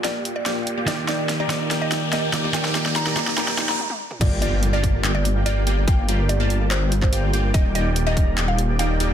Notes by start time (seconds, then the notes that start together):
Already playing: riser
0.04 A#3 F4 G4 D5 G5, snare, closed hi-hat
0.25 closed hi-hat
0.36 D5
0.46 A#3 F4 G4 D5 G5, snare, closed hi-hat
0.67 closed hi-hat
0.77 A#3 F4 G4 D5 G5
0.86 D#3 A#3 D#4 F4 G4 D5 G5, snare, closed hi-hat
1.08 A#3 D#4 G4 D5 G5, snare, closed hi-hat
1.29 snare, closed hi-hat
1.40 A#3 D#4 G4 D5 A#5
1.48 D#3 D#4 F4 G4 D5, snare, closed hi-hat
1.71 A#3 D#4 G4 D5 G5, snare, closed hi-hat
1.82 D#5
1.92 snare, closed hi-hat
2.13 A#3 D#4 G4 D5 D#5 G5, snare, closed hi-hat
2.32 D#3 D#4 F4 G4 D5, snare, closed hi-hat
2.44 A#3 D#4 G4 D5 G5
2.52 D#3 A#3 D#4 F4 G4 D5 G5, snare, closed hi-hat
2.65 snare
2.75 A#3 D#4 G4 D5 G5, snare, closed hi-hat
2.86 snare
2.96 A#5, snare, closed hi-hat
3.07 A#3 D#4 G4 D5 A#5, snare
3.16 D#3 D#4 F4 G4 D5, snare, closed hi-hat
3.27 snare
3.38 A#3 D#4 G4 D5 G5 A#5, snare, closed hi-hat
3.48 snare
3.58 snare, closed hi-hat
3.69 A#5, snare
3.79 high tom
3.90 high tom
4.11 mid tom
4.21 G1 A#3 F4 G4 D5 G5, kick, closed hi-hat, crash, impact
4.32 A#4
4.42 A#3 F4 G4 D5 G5, closed hi-hat
4.52 D5
4.63 F4, closed hi-hat
4.73 A#3 F4 G4 D5 F5 A5
4.83 F4, kick, closed hi-hat
4.94 A#4
5.04 A#3 F4 G4 D5 G5, clap, closed hi-hat
5.15 D5
5.25 F4, closed hi-hat
5.36 F5
5.46 A#3 F4 G4 D5 G5, closed hi-hat
5.56 A#4
5.67 A#3 F4 G4 D5 G5, closed hi-hat
5.77 D5
5.88 A#3 F4 G4 D5 G5, kick, closed hi-hat
5.98 F5
6.08 A#3 F4 G4 D5 G5, closed hi-hat
6.19 A#4
6.29 F4 D5, closed hi-hat
6.40 A#3 F4 G4 D5 A5
6.50 F4, closed hi-hat
6.61 F5
6.71 A#3 F4 G4 C5 D5 G5, clap, closed hi-hat
6.82 A#4
6.92 F4, closed hi-hat
7.02 C5 D5, kick, clap
7.13 A#3 F4 G4 D5 G5, closed hi-hat
7.23 F5
7.33 A#3 F4 G4 D5 G5, closed hi-hat
7.44 A#4
7.54 D#1 A#3 D#4 G4 D5 D#5 G5, kick, closed hi-hat
7.65 D#5
7.75 A#3 D#4 G4 D5 D#5 G5, closed hi-hat
7.86 G5
7.96 G4, closed hi-hat
8.07 A#3 D#4 G4 D5 D#5 A#5
8.17 G4, kick, closed hi-hat
8.27 D#5
8.38 A#3 D#4 G4 D5 G5, clap, closed hi-hat
8.48 F5 G5
8.58 G4, closed hi-hat
8.69 D5
8.79 A#3 D#4 G4 D5 F5 G5, closed hi-hat
8.90 D#5
9.00 A#3 D#4 G4 D5 G5, closed hi-hat